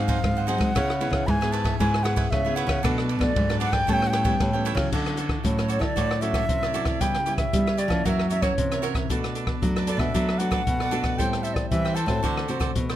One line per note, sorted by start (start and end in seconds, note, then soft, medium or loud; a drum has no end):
0.00 0.16 G#2 loud
0.00 0.21 G#2 medium
0.00 0.45 F#3 medium
0.00 0.45 C4 medium
0.00 0.45 D#4 medium
0.00 0.48 F5 loud
0.08 0.18 D#4 medium
0.08 0.18 G#4 medium
0.08 0.19 C5 medium
0.08 0.19 F#5 medium
0.08 kick medium
0.08 ride medium
0.24 0.57 G#2 medium
0.24 0.73 D#3 medium
0.24 kick medium
0.24 cross-stick medium
0.24 ride soft
0.37 0.47 G#4 soft
0.37 0.47 C5 soft
0.37 0.48 F#5 medium
0.47 0.71 F#3 medium
0.47 0.71 C4 medium
0.47 0.60 D#4 medium
0.47 0.71 D#4 medium
0.47 0.60 G#4 medium
0.47 0.60 C5 medium
0.47 1.28 F#5 medium
0.47 0.58 F#5 medium
0.47 ride soft
0.58 0.71 G#3 medium
0.58 0.74 G#4 soft
0.58 0.74 C5 soft
0.58 0.73 F#5 medium
0.58 kick medium
0.58 cross-stick medium
0.58 ride soft
0.75 1.25 C#3 medium
0.75 1.09 C#3 loud
0.75 0.91 B3 soft
0.75 0.99 E4 medium
0.75 0.91 E4 medium
0.75 0.91 G#4 medium
0.75 1.00 B4 medium
0.75 1.01 C#5 medium
0.75 1.01 E5 medium
0.75 kick medium
0.75 cross-stick medium
0.75 ride medium
0.90 cross-stick medium
1.00 1.36 B3 medium
1.00 1.39 E4 medium
1.00 1.36 E4 medium
1.00 1.36 G#4 medium
1.00 1.39 B4 medium
1.00 1.40 C#5 medium
1.00 1.40 E5 medium
1.00 ride soft
1.10 1.23 C#3 medium
1.10 kick medium
1.10 cross-stick medium
1.10 ride soft
1.27 1.77 G#2 medium
1.27 1.72 G#2 loud
1.27 1.53 G#5 medium
1.27 1.31 B5 medium
1.27 kick medium
1.27 ride soft
1.41 1.76 B3 medium
1.41 1.76 E4 medium
1.41 1.76 G#4 medium
1.41 1.52 B4 soft
1.41 1.53 C#5 soft
1.41 1.53 E5 medium
1.41 cross-stick medium
1.52 1.65 E4 medium
1.52 1.65 B4 medium
1.52 1.64 C#5 medium
1.52 1.63 E5 medium
1.52 1.78 A5 medium
1.52 ride medium
1.64 1.78 B4 soft
1.64 1.78 C#5 soft
1.64 1.78 E5 soft
1.64 kick medium
1.64 cross-stick medium
1.64 ride soft
1.79 2.24 G#2 loud
1.79 2.29 C#3 medium
1.79 2.01 B3 medium
1.79 2.03 E4 medium
1.79 2.02 E4 medium
1.79 2.02 G#4 medium
1.79 2.04 B4 medium
1.79 2.04 C#5 medium
1.79 2.05 E5 medium
1.79 2.05 G#5 medium
1.79 kick medium
1.79 ride soft
1.94 cross-stick medium
2.03 2.40 B3 medium
2.03 2.15 E4 medium
2.03 2.40 E4 medium
2.03 2.40 G#4 medium
2.03 2.15 B4 medium
2.03 2.16 C#5 medium
2.03 2.16 E5 medium
2.03 2.32 F#5 medium
2.03 cross-stick medium
2.03 ride soft
2.16 2.27 E4 medium
2.16 2.27 B4 medium
2.16 2.27 C#5 medium
2.16 2.27 E5 medium
2.16 kick medium
2.16 ride medium
2.31 2.81 G#2 medium
2.31 2.65 C#3 medium
2.31 2.57 E5 medium
2.31 kick medium
2.31 cross-stick medium
2.31 ride soft
2.45 2.80 B3 medium
2.45 2.80 E4 medium
2.45 2.80 G#4 medium
2.45 2.56 B4 soft
2.45 2.56 C#5 medium
2.45 2.57 E5 medium
2.56 2.69 E4 medium
2.56 2.69 B4 medium
2.56 2.68 C#5 medium
2.56 2.67 E5 medium
2.56 2.95 F#5 medium
2.56 ride soft
2.67 2.80 C#3 medium
2.67 2.83 B4 soft
2.67 2.82 C#5 soft
2.67 2.82 E5 soft
2.67 kick medium
2.67 cross-stick medium
2.67 ride soft
2.83 3.33 B2 medium
2.83 3.17 B2 loud
2.83 3.08 F#3 medium
2.83 3.08 A3 medium
2.83 3.08 D4 medium
2.83 3.09 D4 medium
2.83 3.08 A4 medium
2.83 3.09 B4 medium
2.83 3.10 D5 medium
2.83 kick medium
2.83 cross-stick medium
2.83 ride soft
2.98 cross-stick medium
3.09 3.48 D4 medium
3.09 3.48 A4 soft
3.09 3.48 B4 medium
3.09 3.48 D5 medium
3.09 ride soft
3.19 3.32 B2 medium
3.19 3.44 F#3 medium
3.19 3.44 A3 medium
3.19 3.44 D4 medium
3.19 3.58 D5 medium
3.19 kick medium
3.19 cross-stick medium
3.19 ride soft
3.35 3.85 F#2 medium
3.35 3.80 G#2 loud
3.35 kick medium
3.35 ride medium
3.49 3.84 F#3 medium
3.49 3.84 D4 medium
3.49 3.59 A4 soft
3.49 3.60 B4 soft
3.49 3.61 D5 soft
3.49 cross-stick medium
3.60 3.73 D4 medium
3.60 3.73 A4 medium
3.60 3.72 B4 medium
3.60 3.71 D5 medium
3.60 3.74 F#5 loud
3.60 ride medium
3.72 3.87 A4 soft
3.72 3.86 B4 soft
3.72 3.86 D5 soft
3.72 3.91 G5 loud
3.72 kick medium
3.72 cross-stick medium
3.72 ride soft
3.87 4.37 A2 medium
3.87 4.33 A2 loud
3.87 4.23 G3 medium
3.87 4.23 B3 medium
3.87 4.23 C#4 medium
3.87 4.11 E4 medium
3.87 4.12 A4 medium
3.87 4.13 C#5 medium
3.87 4.13 G5 medium
3.87 3.94 A5 loud
3.87 kick medium
3.87 ride soft
3.93 4.08 G5 loud
4.02 cross-stick medium
4.07 4.11 F#5 loud
4.07 4.65 G5 loud
4.13 4.23 E4 medium
4.13 4.23 A4 medium
4.13 4.24 C#5 medium
4.13 4.24 G5 medium
4.13 cross-stick medium
4.13 ride medium
4.24 4.48 G3 medium
4.24 4.48 B3 medium
4.24 4.48 C#4 medium
4.24 4.35 E4 medium
4.24 4.35 A4 medium
4.24 4.35 C#5 medium
4.24 4.35 G5 medium
4.24 kick medium
4.24 ride soft
4.40 4.74 A2 medium
4.40 4.89 E3 medium
4.40 kick medium
4.40 cross-stick medium
4.40 ride soft
4.53 4.76 G3 medium
4.53 4.76 B3 medium
4.53 4.76 C#4 medium
4.53 4.65 A4 soft
4.53 4.65 C#5 soft
4.53 4.65 G5 soft
4.65 4.78 E4 medium
4.65 4.78 A4 medium
4.65 4.77 C#5 medium
4.65 4.76 G5 medium
4.65 ride medium
4.75 4.88 C#3 medium
4.75 5.15 F#3 medium
4.75 5.15 C#4 medium
4.75 5.16 E4 medium
4.75 4.91 C#5 soft
4.75 4.90 G5 medium
4.75 kick medium
4.75 cross-stick medium
4.75 ride medium
4.79 4.91 A4 soft
4.92 5.42 D3 soft
4.92 5.37 D3 medium
4.92 5.17 F#4 medium
4.92 5.17 A4 medium
4.92 5.18 C#5 medium
4.92 5.19 D5 medium
4.92 kick medium
4.92 crash medium
5.06 cross-stick medium
5.06 closed hi-hat soft
5.16 5.33 F#3 soft
5.16 5.33 C#4 medium
5.16 5.33 E4 medium
5.16 5.56 F#4 soft
5.16 5.56 A4 medium
5.16 5.57 C#5 soft
5.16 5.57 D5 medium
5.16 closed hi-hat soft
5.29 kick medium
5.29 cross-stick medium
5.43 5.94 A2 medium
5.43 5.78 A2 medium
5.43 5.79 F#3 medium
5.43 5.79 C#4 medium
5.43 5.79 E4 medium
5.43 kick medium
5.43 closed hi-hat medium
5.58 5.68 A4 soft
5.58 5.69 C#5 soft
5.58 5.69 D5 soft
5.58 cross-stick medium
5.58 closed hi-hat soft
5.68 5.81 F#4 medium
5.68 5.81 A4 medium
5.68 5.82 C#5 medium
5.68 5.80 C#5 medium
5.68 5.79 D5 medium
5.68 closed hi-hat soft
5.79 5.92 D3 medium
5.79 6.17 F#3 medium
5.79 6.17 E4 medium
5.79 5.95 A4 soft
5.79 5.95 C#5 soft
5.79 5.94 D5 soft
5.79 5.85 E5 medium
5.79 kick medium
5.79 cross-stick medium
5.84 6.23 D5 medium
5.96 6.41 A2 medium
5.96 6.46 D3 medium
5.96 6.20 F#4 medium
5.96 6.21 A4 medium
5.96 6.21 C#5 medium
5.96 6.22 D5 medium
5.96 kick medium
5.96 closed hi-hat medium
6.11 cross-stick medium
6.21 6.70 F#3 medium
6.21 6.70 C#4 medium
6.21 6.70 E4 medium
6.21 6.33 F#4 medium
6.21 6.33 A4 soft
6.21 6.34 C#5 medium
6.21 6.34 D5 medium
6.21 7.02 E5 loud
6.21 closed hi-hat soft
6.34 6.44 F#4 medium
6.34 6.44 A4 medium
6.34 6.44 C#5 medium
6.34 6.45 D5 medium
6.34 kick medium
6.34 cross-stick medium
6.34 closed hi-hat soft
6.49 6.98 A2 medium
6.49 7.01 C3 medium
6.49 kick medium
6.49 closed hi-hat medium
6.63 6.73 A4 soft
6.63 6.74 C#5 soft
6.63 6.74 D5 medium
6.63 cross-stick medium
6.73 6.89 F#3 medium
6.73 6.90 C#4 soft
6.73 6.90 E4 medium
6.73 6.86 F#4 medium
6.73 6.87 A4 medium
6.73 6.86 C#5 medium
6.73 6.85 D5 medium
6.73 closed hi-hat soft
6.85 7.00 A4 soft
6.85 7.00 C#5 soft
6.85 6.99 D5 medium
6.85 kick medium
6.85 cross-stick medium
6.85 closed hi-hat soft
7.00 7.50 C#3 medium
7.00 7.45 C#3 medium
7.00 7.16 G3 soft
7.00 7.16 B3 medium
7.00 7.17 E4 medium
7.00 7.25 G4 medium
7.00 7.25 B4 medium
7.00 7.26 C#5 medium
7.00 7.26 E5 medium
7.00 7.37 G5 medium
7.00 kick medium
7.00 closed hi-hat medium
7.15 cross-stick medium
7.15 closed hi-hat soft
7.26 7.42 G3 medium
7.26 7.42 B3 soft
7.26 7.42 E4 medium
7.26 7.65 G4 medium
7.26 7.65 B4 medium
7.26 7.65 C#5 soft
7.26 7.66 E5 medium
7.26 closed hi-hat soft
7.38 7.80 E5 medium
7.38 kick medium
7.38 cross-stick medium
7.38 closed hi-hat soft
7.53 8.03 C#3 medium
7.53 7.88 G3 medium
7.53 7.87 G3 loud
7.53 7.88 B3 medium
7.53 7.88 E4 medium
7.53 kick medium
7.53 closed hi-hat medium
7.67 7.77 B4 soft
7.67 7.78 C#5 soft
7.67 7.79 E5 medium
7.67 cross-stick medium
7.77 7.90 G4 medium
7.77 7.91 B4 medium
7.77 7.90 C#5 medium
7.77 8.07 D5 medium
7.77 7.89 E5 medium
7.77 closed hi-hat medium
7.88 8.26 E3 medium
7.88 8.01 F3 medium
7.88 8.26 A#3 medium
7.88 8.26 C#4 medium
7.88 8.04 B4 soft
7.88 8.04 C#5 soft
7.88 8.03 E5 soft
7.88 kick medium
7.88 cross-stick medium
7.88 closed hi-hat soft
8.05 8.55 F#2 medium
8.05 8.50 F#3 medium
8.05 8.29 F#4 medium
8.05 8.29 A#4 medium
8.05 8.30 C#5 medium
8.05 8.31 E5 medium
8.05 8.30 E5 medium
8.05 8.10 F#5 medium
8.05 kick medium
8.05 closed hi-hat medium
8.19 cross-stick medium
8.30 8.39 E3 medium
8.30 8.39 A#3 soft
8.30 8.39 C#4 medium
8.30 8.41 F#4 soft
8.30 8.41 A#4 medium
8.30 8.42 C#5 medium
8.30 8.43 E5 medium
8.30 8.42 E5 medium
8.30 closed hi-hat soft
8.42 8.79 E3 medium
8.42 8.79 A#3 medium
8.42 8.79 C#4 medium
8.42 8.52 F#4 medium
8.42 8.52 A#4 medium
8.42 8.82 C#5 medium
8.42 8.53 C#5 medium
8.42 8.53 E5 medium
8.42 kick medium
8.42 cross-stick medium
8.42 closed hi-hat soft
8.58 9.10 C3 medium
8.58 kick medium
8.58 closed hi-hat medium
8.71 8.82 A#4 soft
8.71 8.82 C#5 soft
8.71 8.83 E5 soft
8.71 cross-stick medium
8.71 closed hi-hat soft
8.82 9.05 E3 medium
8.82 9.05 A#3 soft
8.82 9.05 C#4 medium
8.82 8.95 F#4 medium
8.82 8.95 A#4 medium
8.82 8.94 C#5 medium
8.82 8.93 E5 medium
8.82 closed hi-hat soft
8.94 9.09 A#4 soft
8.94 9.08 C#5 soft
8.94 9.08 E5 soft
8.94 kick medium
8.94 cross-stick medium
8.94 closed hi-hat soft
9.09 9.59 B2 medium
9.09 9.54 B2 medium
9.09 9.44 A3 medium
9.09 9.34 D4 medium
9.09 9.44 D4 medium
9.09 9.44 F#4 medium
9.09 9.34 A4 medium
9.09 9.35 B4 medium
9.09 9.36 D5 medium
9.09 kick medium
9.09 closed hi-hat medium
9.24 cross-stick medium
9.24 closed hi-hat soft
9.35 9.74 D4 soft
9.35 9.74 A4 soft
9.35 9.74 B4 soft
9.35 9.75 D5 medium
9.35 closed hi-hat soft
9.47 kick medium
9.47 cross-stick medium
9.62 10.12 F#2 medium
9.62 9.96 F#3 medium
9.62 9.86 A3 soft
9.62 9.87 D4 medium
9.62 9.87 F#4 medium
9.62 kick medium
9.62 closed hi-hat medium
9.76 9.86 A4 soft
9.76 9.87 B4 soft
9.76 9.88 D5 soft
9.76 cross-stick medium
9.76 closed hi-hat soft
9.87 10.00 D4 medium
9.87 10.00 A4 medium
9.87 9.99 B4 medium
9.87 10.00 D5 medium
9.87 9.98 D5 medium
9.87 closed hi-hat soft
9.97 10.10 B2 medium
9.97 10.35 A3 medium
9.97 10.35 D4 medium
9.97 10.36 F#4 medium
9.97 10.13 B4 soft
9.97 10.12 D5 soft
9.97 10.40 E5 medium
9.97 kick medium
9.97 cross-stick medium
10.01 10.13 A4 soft
10.14 10.64 B2 medium
10.14 10.59 F#3 loud
10.14 10.38 D4 medium
10.14 10.39 A4 medium
10.14 10.39 B4 medium
10.14 10.40 D5 medium
10.14 kick medium
10.14 closed hi-hat medium
10.29 cross-stick medium
10.38 10.74 A3 medium
10.38 10.50 D4 soft
10.38 10.74 D4 medium
10.38 10.74 F#4 medium
10.38 10.50 A4 soft
10.38 10.51 B4 medium
10.38 10.51 D5 medium
10.38 11.19 F#5 loud
10.38 closed hi-hat soft
10.51 10.61 D4 medium
10.51 10.62 A4 medium
10.51 10.62 B4 medium
10.51 10.62 D5 medium
10.51 kick medium
10.51 cross-stick medium
10.51 closed hi-hat soft
10.67 11.16 F#2 medium
10.67 11.20 B2 medium
10.67 kick medium
10.67 closed hi-hat medium
10.80 10.91 A4 soft
10.80 10.92 B4 soft
10.80 10.92 D5 soft
10.80 cross-stick medium
10.91 11.14 A3 medium
10.91 11.04 D4 medium
10.91 11.14 D4 medium
10.91 11.15 F#4 medium
10.91 11.04 A4 medium
10.91 11.03 B4 medium
10.91 11.02 D5 medium
10.91 closed hi-hat soft
11.03 11.17 A4 soft
11.03 11.17 B4 soft
11.03 11.17 D5 soft
11.03 kick medium
11.03 cross-stick medium
11.03 closed hi-hat soft
11.17 11.69 A2 medium
11.17 11.64 A2 medium
11.17 11.67 G3 soft
11.17 11.67 C4 medium
11.17 11.67 E4 medium
11.17 11.42 A4 medium
11.17 11.43 C5 medium
11.17 11.44 E5 medium
11.17 11.45 G5 medium
11.17 11.44 G5 medium
11.17 kick medium
11.17 closed hi-hat medium
11.33 cross-stick medium
11.33 closed hi-hat soft
11.43 11.82 A4 soft
11.43 11.83 C5 medium
11.43 11.56 E5 medium
11.43 11.83 E5 soft
11.43 11.83 G5 medium
11.43 closed hi-hat soft
11.54 11.69 D5 medium
11.54 kick medium
11.54 cross-stick medium
11.54 closed hi-hat soft
11.70 12.21 E3 medium
11.70 12.05 E3 medium
11.70 11.96 G3 medium
11.70 11.96 C4 medium
11.70 11.96 E4 medium
11.70 11.97 E5 medium
11.70 kick medium
11.70 closed hi-hat medium
11.85 11.95 C5 soft
11.85 11.96 E5 soft
11.85 11.96 G5 medium
11.85 cross-stick medium
11.95 12.08 A4 medium
11.95 12.08 C5 medium
11.95 12.07 E5 medium
11.95 12.06 G5 medium
11.95 12.48 A5 medium
11.95 closed hi-hat medium
12.06 12.19 A2 medium
12.06 12.44 A3 medium
12.06 12.44 C4 medium
12.06 12.45 F#4 medium
12.06 12.22 C5 soft
12.06 12.21 E5 soft
12.06 12.21 G5 soft
12.06 kick soft
12.06 cross-stick medium
12.06 closed hi-hat soft
12.23 12.46 D3 medium
12.23 12.73 D3 medium
12.23 12.47 F#4 medium
12.23 12.48 A4 medium
12.23 12.48 C5 medium
12.23 12.49 D5 medium
12.23 kick medium
12.23 closed hi-hat medium
12.37 cross-stick medium
12.48 12.72 C3 medium
12.48 12.83 A3 medium
12.48 12.83 C4 medium
12.48 12.58 F#4 soft
12.48 12.83 F#4 medium
12.48 12.59 A4 soft
12.48 12.59 C5 medium
12.48 12.60 D5 medium
12.48 closed hi-hat soft
12.60 12.70 F#4 medium
12.60 12.70 A4 medium
12.60 12.70 C5 medium
12.60 12.71 D5 medium
12.60 kick medium
12.60 cross-stick medium
12.60 closed hi-hat soft
12.75 12.96 A2 medium
12.75 12.96 B2 medium
12.75 kick medium
12.75 closed hi-hat medium
12.89 12.96 A4 soft
12.89 12.96 C5 soft
12.89 12.96 D5 soft
12.89 cross-stick medium
12.89 closed hi-hat soft